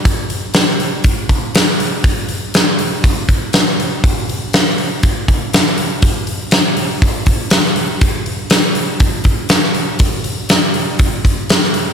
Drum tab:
HH |o-o-o-o-o-o-o-o-|o-o-o-o-o-o-o-o-|o-o-o-o-o-o-o-o-|o-o-o-o-o-o-o-o-|
SD |----o-------o---|----o-------o---|----o-------oo--|----o-------oo--|
BD |o-------o-o-----|o-------o-o-----|o-------o-o-----|o-------o-o-----|

HH |o-o-o-o-o-o-o-o-|o-o-o-o-o-o-o-o-|
SD |----o-------oo--|----o-------oo--|
BD |o-------o-o-----|o-------o-o-----|